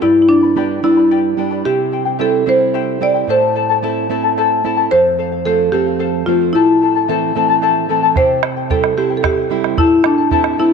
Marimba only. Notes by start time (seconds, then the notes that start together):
0.02 E4
0.22 E4
0.29 D4
0.84 E4
1.65 G4
2.21 A4
2.49 C5
3.03 D5
3.31 C5
4.91 C5
5.46 A4
5.72 G4
6.26 F4
6.53 E4
8.17 C5
8.71 A4
8.98 G4
9.17 A4
9.25 G4
9.78 E4
10.06 D4
10.60 E4